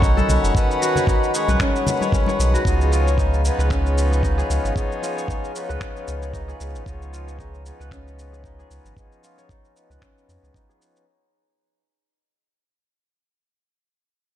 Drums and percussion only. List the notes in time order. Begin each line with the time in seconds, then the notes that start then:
0.02 kick, shaker
0.18 high conga, shaker
0.29 low conga, shaker
0.44 shaker
0.55 kick, shaker
0.71 shaker
0.82 shaker
0.95 low conga, shaker
1.07 kick, shaker
1.23 shaker
1.35 shaker
1.48 muted conga, high conga, shaker
1.60 finger snap, kick, shaker
1.76 shaker
1.87 muted conga, low conga, shaker
2.01 high conga, shaker
2.12 kick, shaker
2.26 high conga, shaker
2.40 shaker
2.55 shaker
2.65 kick, shaker
2.81 shaker
2.93 shaker
3.08 shaker
3.18 kick, shaker
3.34 shaker
3.45 shaker
3.60 shaker
3.70 finger snap, kick, shaker
3.86 shaker
3.98 shaker
4.13 shaker
4.23 kick, shaker
4.39 shaker
4.51 shaker
4.65 shaker
4.76 kick, shaker
4.92 shaker
5.04 shaker
5.18 shaker
5.28 kick, shaker
5.44 shaker
5.56 shaker
5.70 shaker
5.81 finger snap, kick, shaker
5.96 shaker
6.08 shaker
6.22 shaker
6.34 kick, shaker
6.49 shaker
6.61 shaker
6.75 shaker
6.86 kick, shaker
7.02 shaker
7.14 shaker
7.28 shaker
7.39 kick, shaker
7.54 shaker
7.66 shaker
7.81 shaker
7.91 finger snap, kick, shaker
8.08 shaker
8.19 shaker
8.34 shaker
8.44 kick, shaker
8.60 shaker
8.71 shaker
8.86 shaker
8.97 kick, shaker
9.12 shaker
9.24 shaker
9.38 shaker
9.49 kick, shaker
9.65 shaker
9.77 shaker
9.91 shaker
10.02 finger snap, kick, shaker
10.18 shaker
10.30 shaker
10.44 shaker
10.54 kick, shaker
10.70 shaker
10.82 shaker
10.96 shaker